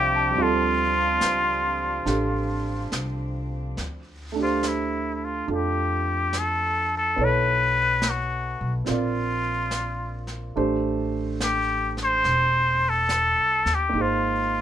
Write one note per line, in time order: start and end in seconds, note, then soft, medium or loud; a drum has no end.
0.00 0.32 C2 medium
0.00 0.36 F3 soft
0.00 3.74 F3 medium
0.00 0.29 G3 soft
0.00 0.33 C4 soft
0.00 3.74 C4 medium
0.00 3.74 D4 medium
0.00 0.44 G4 medium
0.00 0.37 A4 soft
0.00 3.79 C5 soft
0.00 3.79 D5 soft
0.00 3.79 E5 soft
0.00 3.79 F5 soft
0.00 0.19 G5 soft
0.14 0.44 A5 soft
0.31 3.75 G3 soft
0.31 3.76 C4 soft
0.36 1.17 D2 medium
0.36 3.78 F4 soft
0.36 brush sweep soft
0.42 2.95 F4 medium
0.42 2.06 A4 medium
1.21 2.02 C#2 soft
1.21 snare soft
1.21 hi-hat pedal soft
2.06 2.88 A1 medium
2.06 3.77 D4 soft
2.06 3.78 G4 soft
2.06 3.78 A4 soft
2.06 brush sweep soft
2.06 snare soft
2.92 3.74 C2 medium
2.92 snare soft
2.92 hi-hat pedal soft
3.77 5.44 D2 medium
3.77 brush sweep soft
3.77 snare soft
4.32 7.15 A3 soft
4.32 5.46 D4 soft
4.39 4.70 F4 medium
4.39 7.19 G4 soft
4.39 7.21 C5 soft
4.63 snare soft
4.63 hi-hat pedal soft
4.68 5.14 E4 medium
5.14 5.26 E4 soft
5.25 5.49 F4 medium
5.47 7.13 F2 medium
5.47 7.17 D4 soft
5.47 7.18 F4 soft
5.47 7.18 A4 soft
5.47 brush sweep soft
5.55 6.41 G4 medium
6.33 snare soft
6.33 hi-hat pedal soft
6.39 6.94 A4 medium
6.97 7.26 A4 medium
7.16 8.56 B1 medium
7.16 8.86 B3 soft
7.16 8.87 E4 soft
7.16 8.88 A4 soft
7.16 brush sweep soft
7.21 8.12 B4 medium
7.21 8.88 C#5 soft
8.02 snare soft
8.02 hi-hat pedal soft
8.10 8.74 F#4 medium
8.61 8.85 B1 medium
8.85 10.52 A#1 medium
8.85 10.55 C4 soft
8.85 10.56 F4 soft
8.85 10.56 A#4 soft
8.85 brush sweep soft
8.85 snare soft
8.90 10.28 F4 medium
8.90 10.57 D5 medium
9.71 snare soft
9.71 hi-hat pedal soft
10.27 snare soft
10.56 12.21 A1 medium
10.56 13.94 A3 soft
10.56 13.94 D4 soft
10.56 13.94 G4 soft
10.56 13.95 C5 medium
10.56 brush sweep soft
11.40 11.96 G4 medium
11.40 snare soft
11.40 hi-hat pedal soft
11.97 snare soft
12.03 12.91 C5 medium
12.24 13.33 E1 medium
12.24 brush sweep soft
12.24 snare soft
12.89 13.76 A4 medium
13.09 snare soft
13.09 hi-hat pedal soft
13.38 13.64 C2 soft
13.65 13.92 D#2 medium
13.65 snare soft
13.75 14.03 G4 medium
13.89 14.61 A#3 soft
13.89 14.61 D#4 soft
13.93 14.61 G#1 medium
13.93 14.61 G#4 soft
13.93 brush sweep soft
14.00 14.61 F4 medium
14.00 14.61 C5 soft